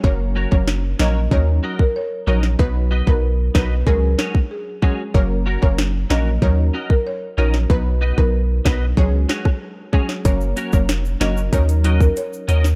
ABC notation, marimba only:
X:1
M:4/4
L:1/16
Q:1/4=94
K:F#
V:1 name="Marimba"
c2 z c z2 d z c z2 A c z c z | B2 z A z2 B z A3 z G3 z | c2 z c z2 d z c z2 A c z c z | B2 z A z2 B z c3 z4 z |
c2 z c z2 d z c z2 A c z c z |]